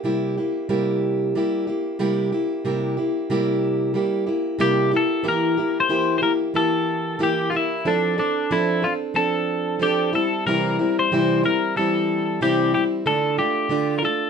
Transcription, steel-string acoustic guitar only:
0.04 0.37 C3 medium
0.04 0.37 G3 medium
0.04 0.37 A#3 medium
0.04 0.37 E4 medium
0.04 0.36 G4 medium
0.37 0.69 A#3 soft
0.37 0.69 E4 soft
0.37 0.69 G4 soft
0.69 1.35 C3 medium
0.69 1.35 G3 medium
0.69 1.35 A#3 medium
0.69 1.37 E4 medium
0.69 1.37 G4 medium
1.35 1.68 G3 medium
1.35 1.68 A#3 medium
1.35 1.67 E4 medium
1.35 1.66 G4 medium
1.67 1.99 A#3 soft
1.67 1.99 E4 soft
1.67 2.00 G4 medium
1.99 2.32 C3 medium
1.99 2.32 G3 medium
1.99 2.33 A#3 loud
1.99 2.33 E4 medium
1.99 2.31 G4 loud
2.32 2.64 A#3 soft
2.32 2.65 E4 medium
2.32 2.65 G4 medium
2.65 2.98 C3 medium
2.65 2.98 G3 medium
2.65 2.98 A#3 medium
2.65 2.97 E4 medium
2.65 2.96 G4 medium
2.97 3.30 A#3 soft
2.97 3.30 E4 soft
2.97 3.30 G4 medium
3.30 3.95 C3 medium
3.30 3.94 G3 medium
3.30 3.95 A#3 medium
3.30 3.95 E4 loud
3.30 3.96 G4 medium
3.94 4.27 G3 medium
3.94 4.27 A#3 medium
3.94 4.26 E4 medium
3.94 4.25 G4 medium
4.27 4.59 A#3 soft
4.27 4.59 E4 medium
4.27 4.60 G4 medium
4.59 4.92 C3 loud
4.59 4.93 G3 medium
4.59 4.92 A#3 loud
4.59 4.92 E4 medium
4.59 4.90 G4 medium
4.91 5.23 A#3 soft
4.91 5.23 E4 medium
4.91 5.24 G4 medium
5.23 5.57 E3 medium
5.23 5.57 A#3 medium
5.23 5.58 E4 loud
5.23 5.56 G4 medium
5.57 5.88 A#3 soft
5.57 5.89 E4 medium
5.57 5.89 G4 soft
5.89 6.23 E3 medium
5.89 6.22 A#3 medium
5.89 6.21 E4 medium
5.89 6.20 G4 medium
6.21 6.54 A#3 soft
6.21 6.54 E4 soft
6.21 6.55 G4 soft
6.54 7.18 E3 medium
6.54 7.19 A#3 medium
6.54 7.19 E4 medium
6.54 7.20 G4 medium
7.19 7.53 E3 medium
7.19 7.53 A#3 medium
7.19 7.52 E4 medium
7.19 7.50 G4 loud
7.51 7.85 A#3 soft
7.51 7.85 E4 soft
7.51 7.85 G4 medium
7.85 8.18 F3 medium
7.85 8.18 C4 medium
7.85 8.17 D4 medium
7.85 8.17 A4 medium
8.18 8.50 C4 soft
8.18 8.51 D4 soft
8.18 8.51 A4 medium
8.51 8.84 F3 medium
8.51 8.84 C4 medium
8.51 8.83 D4 medium
8.51 8.81 A4 medium
8.82 9.14 C4 soft
8.82 9.15 D4 soft
8.82 9.16 A4 medium
9.14 9.78 F3 medium
9.14 9.80 C4 medium
9.14 9.80 D4 medium
9.14 9.81 A4 medium
9.79 10.13 F3 medium
9.79 10.13 C4 medium
9.79 10.14 D4 medium
9.79 10.12 A4 medium
10.13 10.46 G3 soft
10.13 10.47 C4 medium
10.13 10.46 E4 medium
10.46 10.79 C3 medium
10.46 10.79 E3 medium
10.46 10.79 G3 medium
10.46 10.79 C4 loud
10.46 10.78 E4 medium
10.79 11.11 G3 soft
10.79 11.12 C4 medium
10.79 11.12 E4 medium
11.12 11.44 C3 medium
11.12 11.44 E3 medium
11.12 11.44 G3 medium
11.12 11.43 C4 medium
11.12 11.42 E4 medium
11.43 11.76 G3 soft
11.43 11.77 C4 medium
11.43 11.76 E4 medium
11.77 12.40 E3 medium
11.77 12.41 G3 medium
11.77 12.41 C4 medium
11.77 12.41 E4 medium
12.41 12.74 C3 medium
12.41 12.74 E3 medium
12.41 12.74 G3 medium
12.41 12.74 C4 medium
12.41 12.73 E4 medium
12.74 13.06 G3 soft
12.74 13.07 C4 medium
12.74 13.07 E4 medium
13.06 13.39 D3 medium
13.06 13.39 A3 medium
13.06 13.38 D4 medium
13.06 13.37 F4 medium
13.38 13.69 A3 soft
13.38 13.70 D4 medium
13.38 13.71 F4 medium
13.69 14.03 D3 medium
13.69 14.04 A3 medium
13.69 14.03 D4 medium
13.69 14.01 F4 loud
14.02 14.30 A3 soft
14.02 14.30 D4 soft
14.02 14.30 F4 medium

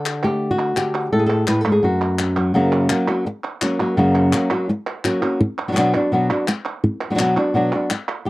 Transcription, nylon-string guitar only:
0.00 0.75 D3 medium
0.00 0.24 A4 medium
0.24 2.55 A3 medium
0.24 0.51 G4 medium
0.51 1.12 F#4 medium
0.76 1.10 D3 medium
0.76 1.13 G4 medium
1.13 1.47 A2 medium
1.13 1.25 A4 medium
1.19 1.62 G#4 medium
1.26 1.48 A4 medium
1.48 1.65 A2 medium
1.48 1.61 B4 medium
1.61 1.84 A4 medium
1.65 1.82 G#2 medium
1.72 1.84 G#4 medium
1.83 2.53 F#2 medium
1.83 2.55 F#4 medium
2.20 2.55 C#4 soft
2.37 2.53 F#3 medium
2.54 2.89 F#2 medium
2.54 2.90 C#3 medium
2.54 2.88 F#3 medium
2.54 2.89 A#3 medium
2.54 2.90 C#4 medium
2.54 2.90 F#4 medium
2.89 3.07 F#3 medium
2.89 3.08 A#3 medium
2.89 3.07 C#4 medium
2.89 3.06 F#4 medium
3.08 3.25 F#3 soft
3.08 3.25 A#3 soft
3.08 3.26 C#4 medium
3.08 3.25 F#4 medium
3.26 muted nylon-string guitar stroke medium
3.62 3.80 F#3 soft
3.62 3.80 A#3 medium
3.62 3.80 C#4 medium
3.62 3.78 F#4 medium
3.80 3.97 F#3 soft
3.80 3.97 A#3 medium
3.80 3.97 C#4 medium
3.80 3.97 F#4 medium
3.97 4.32 F#2 medium
3.97 4.33 C#3 medium
3.97 4.32 F#3 medium
3.97 4.33 A#3 medium
3.97 4.33 C#4 medium
3.97 4.33 F#4 medium
4.33 4.50 F#3 medium
4.33 4.51 A#3 medium
4.33 4.51 C#4 medium
4.33 4.50 F#4 medium
4.51 4.69 F#3 soft
4.51 4.69 A#3 medium
4.51 4.69 C#4 medium
4.51 4.68 F#4 medium
4.69 muted nylon-string guitar stroke medium
5.05 5.23 F#3 medium
5.05 5.22 A#3 medium
5.05 5.22 C#4 medium
5.05 5.21 F#4 medium
5.22 5.41 F#3 soft
5.22 5.40 A#3 soft
5.22 5.40 C#4 medium
5.22 5.40 F#4 medium
5.41 muted nylon-string guitar stroke medium
5.68 5.71 F#3 medium
5.68 5.72 B3 medium
5.68 5.72 D4 medium
5.68 5.73 F#4 medium
5.72 5.76 F#3 medium
5.72 5.76 B3 medium
5.72 5.77 D4 medium
5.72 5.77 F#4 medium
5.77 5.94 B2 medium
5.77 5.94 F#3 medium
5.77 5.94 B3 medium
5.77 5.94 D4 medium
5.77 5.94 F#4 loud
5.95 6.12 B3 medium
5.95 6.12 D4 medium
5.95 6.12 F#4 medium
6.12 6.29 B2 medium
6.12 6.29 F#3 medium
6.12 6.30 B3 medium
6.12 6.30 D4 medium
6.12 6.29 F#4 medium
6.30 6.47 B3 soft
6.30 6.47 D4 medium
6.30 6.47 F#4 soft
6.48 muted nylon-string guitar stroke medium
6.84 muted nylon-string guitar stroke medium
7.10 7.14 F#3 soft
7.10 7.14 B3 medium
7.10 7.15 D4 medium
7.10 7.15 F#4 medium
7.15 7.18 F#3 medium
7.15 7.19 B3 medium
7.15 7.19 D4 medium
7.15 7.19 F#4 medium
7.19 7.36 B2 medium
7.19 7.36 F#3 medium
7.19 7.37 B3 medium
7.19 7.37 D4 medium
7.19 7.36 F#4 loud
7.37 7.54 B3 soft
7.37 7.55 D4 medium
7.37 7.54 F#4 medium
7.54 7.71 B2 medium
7.54 7.72 F#3 medium
7.54 7.72 B3 medium
7.54 7.72 D4 medium
7.54 7.71 F#4 medium
7.73 7.90 B3 soft
7.73 7.90 D4 soft
7.73 7.90 F#4 medium
7.90 muted nylon-string guitar stroke medium
8.25 8.30 F#2 medium
8.25 8.30 G4 medium

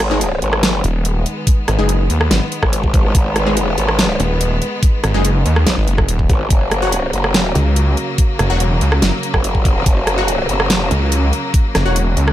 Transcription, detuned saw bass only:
0.84 1.24 D#1 loud
1.68 1.77 G#1 medium
1.79 2.08 F#1 medium
2.10 2.29 D#2 medium
2.31 2.40 G#1 loud
4.20 4.60 D#1 loud
5.04 5.13 G#1 medium
5.14 5.44 F#1 loud
5.46 5.65 D#2 medium
5.77 5.86 G#1 loud
5.88 6.07 F#1 medium
6.09 6.28 D#1 medium
7.55 7.96 C#2 loud
8.39 8.48 F#1 loud
8.50 8.80 E1 loud
8.81 9.01 C#2 medium
9.02 9.11 F#1 loud
10.91 11.31 C#2 loud
11.75 11.84 F#1 loud
11.86 12.15 E1 loud
12.17 12.33 C#2 medium

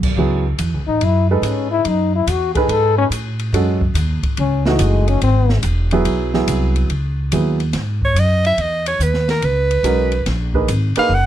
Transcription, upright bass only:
0.00 0.16 B1 medium
0.16 0.58 C#2 medium
0.59 0.74 E2 medium
0.74 0.87 C#2 medium
0.88 1.01 A1 medium
1.01 1.41 F#2 medium
1.42 1.83 G#2 medium
1.84 2.26 F#2 medium
2.27 2.67 E2 medium
2.68 3.09 G#2 medium
3.10 3.51 A2 medium
3.52 3.93 F#2 loud
3.94 4.21 D#2 medium
4.23 muted upright bass stroke soft
4.38 4.79 C#2 medium
4.79 5.20 F#1 loud
5.22 5.62 G#1 loud
5.63 6.04 E1 medium
6.05 6.46 B1 medium
6.48 6.88 C2 loud
6.89 7.30 C#2 medium
7.32 7.73 D#2 medium
7.73 8.14 G#2 medium
8.14 8.56 F#2 medium
8.57 8.98 E2 medium
8.99 9.40 D#2 medium
9.41 9.82 C#2 medium
9.83 10.24 B1 medium
10.26 10.67 A#1 medium
10.68 10.94 G#1 medium
10.97 muted upright bass stroke soft
11.09 11.26 F#1 medium

